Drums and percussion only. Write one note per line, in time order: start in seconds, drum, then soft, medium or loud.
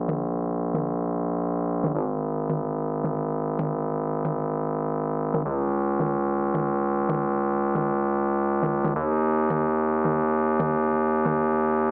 0.09 mid tom medium
0.74 mid tom medium
1.84 mid tom medium
2.49 mid tom medium
3.04 mid tom medium
3.59 mid tom medium
4.25 mid tom medium
5.34 mid tom medium
6.00 mid tom medium
6.54 mid tom medium
7.09 mid tom medium
7.75 mid tom medium
8.63 mid tom medium
8.84 mid tom medium
9.50 mid tom medium
10.05 mid tom medium
10.60 mid tom medium
11.25 mid tom medium